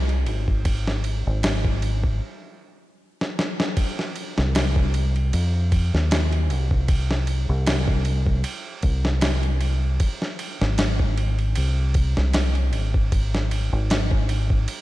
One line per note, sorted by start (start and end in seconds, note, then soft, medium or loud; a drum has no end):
0.00 0.28 C2 medium
0.09 ride soft
0.26 1.23 G#1 loud
0.26 ride medium
0.48 kick medium
0.65 kick loud
0.65 ride medium
0.88 snare soft
1.04 ride medium
1.27 2.19 G#1 loud
1.43 snare loud
1.43 ride medium
1.65 kick medium
1.82 ride medium
2.04 kick medium
3.21 snare medium
3.39 snare medium
3.60 snare medium
3.77 kick loud
3.77 ride medium
3.99 snare soft
4.16 ride medium
4.38 5.31 C2 loud
4.38 snare medium
4.55 snare loud
4.55 ride medium
4.76 kick medium
4.94 ride medium
5.16 ride soft
5.33 5.90 F2 medium
5.33 ride medium
5.72 kick medium
5.72 ride medium
5.94 6.51 D#2 medium
5.94 snare soft
6.11 snare loud
6.11 ride medium
6.33 ride soft
6.50 7.46 C2 loud
6.50 ride medium
6.71 kick loud
6.88 kick loud
6.88 ride medium
7.11 snare medium
7.27 ride medium
7.49 8.42 C2 loud
7.67 snare loud
7.67 ride medium
7.88 kick medium
8.05 ride medium
8.26 kick medium
8.44 ride medium
8.82 9.97 C2 medium
8.82 kick medium
8.82 ride medium
9.05 snare medium
9.21 snare loud
9.21 ride medium
9.43 ride soft
9.61 ride medium
10.00 kick loud
10.00 ride medium
10.22 snare soft
10.39 ride medium
10.61 11.54 G#1 loud
10.61 snare medium
10.78 snare loud
10.78 ride medium
10.99 kick medium
11.17 ride medium
11.39 ride soft
11.55 12.13 C2 medium
11.55 ride medium
11.94 kick medium
11.94 ride medium
12.17 12.74 C2 medium
12.17 snare soft
12.33 snare loud
12.33 ride medium
12.55 ride soft
12.73 13.69 G#1 loud
12.73 ride medium
12.94 kick medium
13.12 kick loud
13.12 ride medium
13.35 snare soft
13.51 ride medium
13.73 14.65 G#1 loud
13.90 snare loud
13.90 ride medium
14.11 kick loud
14.29 ride medium
14.50 kick medium
14.68 ride medium